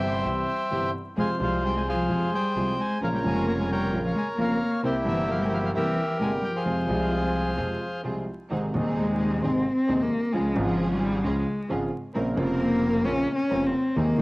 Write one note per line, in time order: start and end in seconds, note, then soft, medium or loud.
0.00 0.20 G1 medium
0.00 0.21 G1 medium
0.00 0.21 G2 medium
0.00 0.20 C3 medium
0.00 0.21 E3 medium
0.00 0.22 G3 soft
0.00 0.90 G3 medium
0.00 0.20 C4 medium
0.00 0.20 E4 medium
0.00 0.22 E4 medium
0.00 0.21 G4 medium
0.00 0.91 C5 medium
0.00 0.91 E5 medium
0.00 0.91 G5 medium
0.24 0.44 C2 soft
0.24 0.44 C3 soft
0.24 0.44 E3 soft
0.24 0.44 G3 soft
0.24 0.44 C4 soft
0.24 0.44 E4 soft
0.24 0.44 G4 soft
0.71 0.90 G1 soft
0.71 0.91 G2 soft
0.71 0.90 C3 soft
0.71 0.91 E3 soft
0.71 0.91 G3 soft
0.71 0.90 C4 soft
0.71 0.90 E4 soft
0.71 0.91 E4 soft
0.71 0.91 G4 soft
1.17 1.37 F2 soft
1.17 1.37 C3 soft
1.17 1.37 F3 soft
1.17 1.28 G#3 medium
1.17 1.37 G#3 soft
1.17 1.36 C4 soft
1.17 1.37 F4 soft
1.17 1.37 G#4 soft
1.17 1.87 C5 soft
1.17 1.42 F5 medium
1.17 1.30 G#5 medium
1.40 2.06 C2 medium
1.40 2.06 C3 medium
1.40 2.06 F3 soft
1.40 1.62 F3 medium
1.40 2.07 G#3 soft
1.40 2.06 C4 medium
1.40 2.06 F4 medium
1.40 2.07 F4 medium
1.40 2.06 G#4 medium
1.40 1.63 F5 medium
1.64 1.74 G3 medium
1.64 1.75 G5 medium
1.76 1.81 G#3 medium
1.76 1.82 G#5 medium
1.88 2.30 F3 medium
1.88 2.75 G#4 medium
1.88 2.33 C5 medium
1.88 2.31 F5 medium
2.09 2.29 F2 soft
2.09 2.28 C3 soft
2.09 2.29 F3 soft
2.09 2.29 G#3 soft
2.09 2.29 C4 soft
2.09 2.29 F4 soft
2.09 2.29 G#4 soft
2.33 2.75 G3 medium
2.33 2.98 C5 soft
2.33 2.81 G5 medium
2.55 2.74 C2 soft
2.55 2.75 C2 soft
2.55 2.75 C3 soft
2.55 2.75 F3 soft
2.55 2.75 G#3 soft
2.55 2.74 C4 soft
2.55 2.75 F4 soft
2.55 2.75 G#4 soft
2.79 3.00 G#3 medium
2.79 3.01 G#5 medium
3.01 3.20 A#1 soft
3.01 3.21 A#1 soft
3.01 3.21 A#2 soft
3.01 3.21 C#3 soft
3.01 3.07 F3 medium
3.01 3.21 F3 soft
3.01 3.21 A#3 soft
3.01 3.20 C#4 soft
3.01 3.20 F4 soft
3.01 3.21 F4 soft
3.01 3.20 A#4 soft
3.01 3.70 A#4 medium
3.01 3.71 C#5 medium
3.01 3.08 F5 medium
3.13 3.18 G3 medium
3.13 3.20 G5 medium
3.23 3.89 F1 medium
3.23 3.89 F2 medium
3.23 3.88 C#3 medium
3.23 3.89 F3 soft
3.23 3.46 G#3 medium
3.23 3.90 A#3 soft
3.23 3.89 C#4 medium
3.23 3.89 F4 medium
3.23 3.90 F4 medium
3.23 3.89 A#4 medium
3.27 3.47 G#5 medium
3.47 3.52 A#3 medium
3.47 3.54 A#5 medium
3.59 3.69 G#3 medium
3.59 3.71 G#5 medium
3.70 4.01 G3 medium
3.70 4.57 A#4 medium
3.70 4.40 C#5 medium
3.70 4.03 G5 medium
3.92 4.11 A#1 soft
3.92 4.12 A#1 soft
3.92 4.12 A#2 soft
3.92 4.11 C#3 soft
3.92 4.12 F3 soft
3.92 4.12 A#3 soft
3.92 4.11 C#4 soft
3.92 4.12 F4 soft
3.92 4.12 A#4 soft
4.04 4.09 F3 medium
4.04 4.11 F5 medium
4.15 4.25 G#3 medium
4.15 4.27 G#5 medium
4.37 4.57 F1 soft
4.37 4.57 F2 soft
4.37 4.57 C#3 soft
4.37 4.57 F3 soft
4.37 4.69 A#3 medium
4.37 4.57 A#3 soft
4.37 4.57 C#4 soft
4.37 4.57 F4 soft
4.37 4.57 A#4 soft
4.41 4.82 C#5 medium
4.41 4.81 F5 medium
4.41 4.71 A#5 medium
4.83 5.02 C2 soft
4.83 5.02 C3 soft
4.83 4.93 C3 medium
4.83 5.02 G3 soft
4.83 5.02 A#3 soft
4.83 5.02 C4 soft
4.83 5.02 E4 soft
4.83 5.71 E4 medium
4.83 5.71 G4 soft
4.83 5.02 A#4 medium
4.83 4.95 C5 medium
5.03 5.70 G1 medium
5.03 5.71 G1 medium
5.03 5.70 G2 medium
5.03 5.69 C3 medium
5.03 5.27 E3 medium
5.03 5.70 G3 medium
5.03 5.71 A#3 soft
5.03 5.70 C4 medium
5.03 5.70 E4 medium
5.03 5.70 A#4 medium
5.07 5.71 E4 medium
5.07 5.30 E5 medium
5.28 5.38 F3 medium
5.28 5.41 F5 medium
5.39 5.41 G3 medium
5.39 5.44 G#3 medium
5.39 5.44 G5 medium
5.45 5.50 G3 medium
5.45 5.47 G#5 soft
5.49 5.55 F3 medium
5.49 5.53 G5 medium
5.54 5.58 F5 medium
5.62 5.67 F3 medium
5.62 5.70 F5 medium
5.73 5.93 C2 soft
5.73 5.93 C3 soft
5.73 6.16 E3 medium
5.73 5.93 G3 soft
5.73 5.93 A#3 soft
5.73 5.93 C4 soft
5.73 5.93 E4 soft
5.73 6.62 G4 medium
5.73 5.93 A#4 soft
5.73 6.63 A#4 medium
5.73 6.17 E5 medium
6.19 6.39 G1 soft
6.19 6.39 G2 soft
6.19 6.39 C3 soft
6.19 6.39 G3 soft
6.19 6.29 G#3 medium
6.19 6.39 A#3 soft
6.19 6.38 C4 soft
6.19 6.38 E4 soft
6.19 6.39 E4 soft
6.19 6.39 A#4 soft
6.19 6.31 G#5 medium
6.41 6.52 G3 medium
6.41 6.55 G5 medium
6.53 8.00 F3 medium
6.53 8.01 G#4 medium
6.53 8.01 C5 medium
6.53 8.01 F5 medium
6.65 6.85 F2 soft
6.65 6.84 C3 soft
6.65 6.85 F3 soft
6.65 6.85 G#3 soft
6.65 6.84 C4 soft
6.65 6.85 F4 soft
6.65 6.85 G#4 soft
6.88 7.54 C2 medium
6.88 7.54 C3 medium
6.88 7.54 F3 soft
6.88 7.54 G#3 medium
6.88 7.53 C4 medium
6.88 7.53 F4 medium
6.88 7.55 F4 medium
6.88 7.54 G#4 medium
7.56 7.77 F2 soft
7.56 7.77 C3 soft
7.56 7.77 F3 soft
7.56 7.77 G#3 soft
7.56 7.76 C4 soft
7.56 7.77 F4 soft
7.56 7.77 G#4 soft
8.04 8.24 C2 soft
8.04 8.24 C3 soft
8.04 8.24 F3 soft
8.04 8.24 G#3 soft
8.04 8.24 C4 soft
8.04 8.24 F4 soft
8.04 8.24 G#4 soft
8.50 8.70 G#1 soft
8.50 8.70 G#2 soft
8.50 8.70 C3 soft
8.50 8.70 D#3 soft
8.50 8.70 G#3 soft
8.50 8.70 C4 soft
8.50 8.70 D#4 soft
8.50 8.70 G#4 soft
8.73 9.40 D#1 medium
8.73 9.40 D#2 medium
8.73 9.39 C3 medium
8.73 9.40 D#3 medium
8.73 9.40 G#3 soft
8.73 9.39 C4 medium
8.73 9.39 D#4 medium
8.73 9.41 D#4 medium
8.73 9.39 G#4 medium
8.97 9.43 G#3 medium
9.41 9.62 G#1 soft
9.41 9.62 G#2 soft
9.41 9.62 C3 soft
9.41 9.62 D#3 soft
9.41 9.63 G#3 soft
9.41 9.72 C4 medium
9.41 9.62 C4 soft
9.41 9.62 D#4 soft
9.41 9.62 G#4 soft
9.72 10.04 C4 medium
9.88 10.08 D#1 soft
9.88 10.08 D#2 medium
9.88 10.08 D#2 soft
9.88 10.08 C3 soft
9.88 10.08 D#3 soft
9.88 10.08 G#3 soft
9.88 10.07 C4 soft
9.88 10.07 D#4 soft
9.88 10.08 D#4 soft
9.88 10.07 G#4 medium
10.02 10.34 A#3 medium
10.33 10.53 C#2 medium
10.33 10.53 C#2 soft
10.33 10.52 C#3 soft
10.33 10.53 F3 soft
10.33 10.63 G#3 medium
10.33 10.53 G#3 soft
10.33 10.52 C#4 soft
10.33 10.52 F4 soft
10.33 10.53 F4 soft
10.33 10.53 G#4 medium
10.54 11.21 G#1 medium
10.54 11.21 G#2 medium
10.54 11.20 C#3 medium
10.54 11.21 F3 medium
10.54 11.21 G#3 medium
10.54 11.21 C#4 medium
10.54 11.21 F4 medium
10.54 11.22 F4 medium
10.54 11.21 G#4 medium
10.64 10.95 F3 medium
10.93 11.25 G3 medium
11.24 11.43 C#2 soft
11.24 11.43 C#2 medium
11.24 11.43 C#3 medium
11.24 11.43 F3 soft
11.24 11.69 G#3 medium
11.24 11.43 G#3 soft
11.24 11.43 C#4 soft
11.24 11.43 F4 soft
11.24 11.44 G#4 medium
11.69 11.89 G#1 medium
11.69 11.89 G#2 medium
11.69 11.88 C#3 soft
11.69 11.89 F3 soft
11.69 11.89 G#3 soft
11.69 11.88 C#4 medium
11.69 11.88 F4 soft
11.69 11.89 F4 soft
11.69 11.88 G#4 medium
12.15 12.34 A#1 medium
12.15 12.34 A#2 soft
12.15 12.34 C#3 soft
12.15 12.34 A#3 soft
12.15 12.34 C4 medium
12.15 12.34 C4 soft
12.15 12.34 C#4 soft
12.15 12.34 F4 soft
12.15 12.34 A#4 medium
12.35 13.02 F1 medium
12.35 13.02 F2 medium
12.35 13.01 C#3 medium
12.35 13.01 A#3 medium
12.35 13.02 C4 medium
12.35 13.03 F4 medium
12.35 13.02 A#4 medium
12.60 13.07 A#3 medium
13.04 13.24 A#1 soft
13.04 13.24 A#2 soft
13.04 13.24 C#3 soft
13.04 13.24 A#3 soft
13.04 13.24 C4 soft
13.04 13.24 C#4 soft
13.04 13.35 C#4 loud
13.04 13.24 F4 medium
13.04 13.24 A#4 medium
13.35 13.67 C#4 medium
13.50 13.70 F1 medium
13.50 13.70 F1 soft
13.50 13.70 F2 soft
13.50 13.70 C#3 soft
13.50 13.70 A#3 soft
13.50 13.70 C4 soft
13.50 13.70 C#4 soft
13.50 13.70 F4 soft
13.50 13.70 A#4 medium
13.66 13.98 C4 medium
13.96 14.15 D#2 medium
13.96 14.15 C3 soft
13.96 14.15 D#3 medium
13.96 14.15 G#3 soft
13.96 14.22 A#3 medium
13.96 14.15 C4 medium
13.96 14.15 D#4 soft
13.96 14.16 D#4 soft
13.96 14.16 G#4 medium
14.17 14.22 C3 medium
14.17 14.22 D#3 medium
14.17 14.22 C4 medium
14.17 14.22 D#4 medium
14.17 14.22 G#4 medium